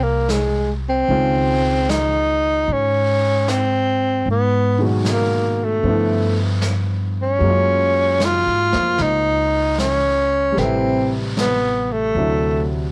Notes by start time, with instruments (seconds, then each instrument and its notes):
Already playing: upright bass C2, grand piano D#3 G#3 A#3 G4 C5
0.03 tenor saxophone A#3
0.29 tenor saxophone G#3, snare, hi-hat pedal
0.89 tenor saxophone C4
1.08 upright bass C#2, grand piano C#3 D#3 G#3 F4 C5, brush sweep
1.89 tenor saxophone D#4, snare, hi-hat pedal
2.68 upright bass G#2, brush sweep
2.73 tenor saxophone C#4
3.48 tenor saxophone C4, snare, hi-hat pedal
4.26 upright bass G#2, brush sweep
4.31 tenor saxophone B3
4.79 grand piano B2 D#3 F#3 G#4
4.83 grand piano F#4
5.05 snare, hi-hat pedal
5.12 tenor saxophone A#3
5.64 tenor saxophone A3
5.83 upright bass G2, grand piano D3 F3 A3 B3, brush sweep
5.88 grand piano E4
6.62 snare, hi-hat pedal
7.22 tenor saxophone C#4
7.39 upright bass F#2, grand piano F#3 G#3, brush sweep
7.44 grand piano A#3 C#4
7.50 grand piano F4
8.20 snare, hi-hat pedal
8.25 tenor saxophone F4
8.47 upright bass G#2
8.72 upright bass F2, grand piano A#3 F4 C5, snare
8.98 upright bass C#2, brush sweep, snare
9.02 tenor saxophone D#4
9.78 tenor saxophone C#4, snare, hi-hat pedal
10.52 grand piano G3 A3
10.57 upright bass A1, grand piano C3 B4, tenor saxophone C4, brush sweep, snare
10.63 grand piano E4
11.37 tenor saxophone B3, snare, hi-hat pedal
11.92 tenor saxophone A3
12.15 upright bass D2, grand piano C3 F#3 A3 D4 E4, brush sweep